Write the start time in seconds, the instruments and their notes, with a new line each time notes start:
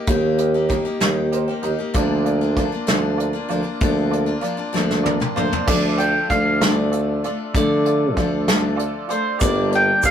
Already playing: upright piano G4 A#4 D#5
0.07 tuba D#2, steel-string acoustic guitar D#3 A#3 D#4 G4, kick, closed hi-hat
0.38 upright piano G4 A#4 D#5, closed hi-hat
0.54 steel-string acoustic guitar A#3 D#4 G4
0.69 steel-string acoustic guitar D#3 A#3 D#4 G4, upright piano G4 A#4 D#5, kick, closed hi-hat
0.85 steel-string acoustic guitar A#3 D#4 G4
1.00 tuba D#2, steel-string acoustic guitar D#3 A#3 D#4 G4, snare, closed hi-hat
1.32 upright piano G4 A#4 C5 D#5, closed hi-hat
1.48 steel-string acoustic guitar A#3 D#4 G4, upright piano G5
1.62 tuba D#2, steel-string acoustic guitar D#3 A#3 D#4 G4, upright piano G4 A#4 D#5 A#5, closed hi-hat
1.79 steel-string acoustic guitar A#3 D#4 G4
1.94 tuba D2, steel-string acoustic guitar D3 F3 A#3 D4 F4, upright piano F4 A#4 D5, kick, closed hi-hat
2.24 upright piano F4 A#4 D5, closed hi-hat
2.41 steel-string acoustic guitar A#3 D4 F4
2.55 steel-string acoustic guitar F3 A#3 D4, upright piano F4 A#4 D5, kick, closed hi-hat
2.59 steel-string acoustic guitar F4
2.72 steel-string acoustic guitar A#3 D4 F4
2.87 tuba D2, steel-string acoustic guitar D3 F3 A#3 D4 F4, snare, closed hi-hat
3.17 upright piano F4 A#4 D5, closed hi-hat
3.33 steel-string acoustic guitar A#3 D4 F4
3.48 tuba D2, steel-string acoustic guitar F3 A#3 D4 F4, upright piano F4 A#4 D5, closed hi-hat
3.63 steel-string acoustic guitar A#3 D4 F4
3.81 tuba D2, steel-string acoustic guitar D3 F3 A#3 D4 F4, kick, closed hi-hat
4.10 upright piano F4 A#4 D5, closed hi-hat
4.26 steel-string acoustic guitar A#3 D4 F4
4.41 steel-string acoustic guitar F3 A#3 D4 F4, upright piano F4 A#4 D5, closed hi-hat
4.57 steel-string acoustic guitar A#3 D4 F4
4.73 tuba D2, steel-string acoustic guitar D3 F3 A#3 D4 F4, snare
4.91 snare
5.02 upright piano F4 A#4 D5 F5, high tom
5.20 steel-string acoustic guitar A#3 D4 F4, upright piano G5, mid tom
5.35 tuba D2, steel-string acoustic guitar F3 A#3, upright piano F4 A#4 D5 A5, mandolin C5, mid tom
5.39 steel-string acoustic guitar D4 F4
5.52 steel-string acoustic guitar A#3 D4 F4, floor tom
5.66 tuba D2, steel-string acoustic guitar D3 F3 A3 D4, upright piano F4 A4 D5, mandolin D5, kick, crash
5.70 steel-string acoustic guitar F4
5.96 upright piano F4 A4 D5, mandolin G5, closed hi-hat
6.29 tuba D2, steel-string acoustic guitar F3 A3 D4 F4, upright piano F4 A4 D5, mandolin F5, kick, closed hi-hat
6.61 steel-string acoustic guitar D3 F3 A3 D4 F4, mandolin D5, snare, closed hi-hat
6.91 upright piano F4 A4 D5, closed hi-hat
7.23 steel-string acoustic guitar A3 D4 F4, upright piano F4 A4 D5, closed hi-hat
7.54 tuba D3, steel-string acoustic guitar D3 F3 A3 D4 F4, mandolin D5, kick, closed hi-hat
7.85 upright piano F4 A4 D5, closed hi-hat
8.16 tuba D2, steel-string acoustic guitar F3 A3 D4, upright piano F4 A4 D5, kick, closed hi-hat
8.20 steel-string acoustic guitar F4
8.48 steel-string acoustic guitar D3 F3 A3 D4 F4, snare, closed hi-hat
8.76 upright piano F4 A4 D5, closed hi-hat
9.08 steel-string acoustic guitar A3 D4 F4, upright piano F4 A4 D5, mandolin C5, closed hi-hat
9.38 tuba G1, steel-string acoustic guitar G2 D3 G3, upright piano G4 A#4 D5, mandolin D5, kick, closed hi-hat, shaker
9.42 steel-string acoustic guitar A#3 D4 G4
9.69 upright piano G4 A#4 D5, closed hi-hat
9.75 mandolin G5
10.02 tuba G1, steel-string acoustic guitar G3 A#3 D4, upright piano G4 A#4 D5, mandolin F5, kick, closed hi-hat, shaker
10.06 steel-string acoustic guitar G4